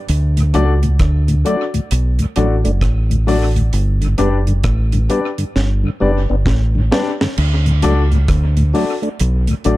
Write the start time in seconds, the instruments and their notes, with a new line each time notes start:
0.09 fingered electric bass D2, closed hi-hat
0.37 tonewheel organ D2 A2, closed hi-hat
0.53 fingered electric bass C#2, tonewheel organ F#3 A3 D4, upright piano D4 F#4 A4 D5, closed hi-hat
0.83 tonewheel organ D2 A2, closed hi-hat
0.99 fingered electric bass D2, kick, cross-stick, closed hi-hat
1.28 tonewheel organ D2 A2, closed hi-hat
1.45 tonewheel organ F#3 A3 D4, upright piano D4 F#4 A4 D5, closed hi-hat
1.74 tonewheel organ D2 A2, closed hi-hat
1.91 fingered electric bass B1, closed hi-hat
2.19 tonewheel organ D2 A2, closed hi-hat
2.36 fingered electric bass A1, tonewheel organ F#3 A3 D4, upright piano D4 F#4 A4 D5, closed hi-hat
2.64 fingered electric bass F#1, tonewheel organ A3 D4, closed hi-hat
2.81 fingered electric bass A1, kick, cross-stick, closed hi-hat
3.10 tonewheel organ D2 A2, closed hi-hat
3.27 tonewheel organ F#3 A3 D4, upright piano D4 F#4 A4 D5, open hi-hat
3.56 tonewheel organ D2 A2, closed hi-hat
3.73 fingered electric bass G1, closed hi-hat
4.01 tonewheel organ G2 D3, closed hi-hat
4.18 fingered electric bass F#1, tonewheel organ G3 B3 D4, upright piano D4 G4 B4 D5, closed hi-hat
4.47 tonewheel organ G2 D3, closed hi-hat
4.64 fingered electric bass A1, kick, cross-stick, closed hi-hat
4.92 tonewheel organ G2 D3, closed hi-hat
5.09 tonewheel organ G3 B3 D4, upright piano D4 G4 B4 D5, closed hi-hat
5.38 tonewheel organ G2 D3, closed hi-hat
5.56 fingered electric bass G1, snare
5.84 tonewheel organ G2 D3
6.00 fingered electric bass F#1, tonewheel organ G3 B3 D4, upright piano D4 G4 B4 D5
6.29 fingered electric bass G1, tonewheel organ B3 D4
6.46 fingered electric bass A1, kick, snare
6.75 tonewheel organ G2 D3
6.91 tonewheel organ G3 B3 D4, upright piano D4 G4 B4 D5, snare
7.21 tonewheel organ G2 D3, snare
7.38 fingered electric bass D2, crash
7.66 tonewheel organ D2 A2, closed hi-hat
7.82 fingered electric bass C#2, tonewheel organ F#3 A3 D4, upright piano D4 F#4 A4 D5, closed hi-hat
8.12 tonewheel organ D2 A2, closed hi-hat
8.28 fingered electric bass D2, kick, cross-stick, closed hi-hat
8.57 tonewheel organ D2 A2, closed hi-hat
8.73 tonewheel organ F#3 A3 D4, upright piano D4 F#4 A4 D5, open hi-hat
9.02 tonewheel organ A3 D4, closed hi-hat
9.20 fingered electric bass B1, closed hi-hat
9.47 tonewheel organ D2 A2, closed hi-hat
9.64 fingered electric bass A1, tonewheel organ F#3 A3 D4, upright piano D4 F#4 A4 D5, closed hi-hat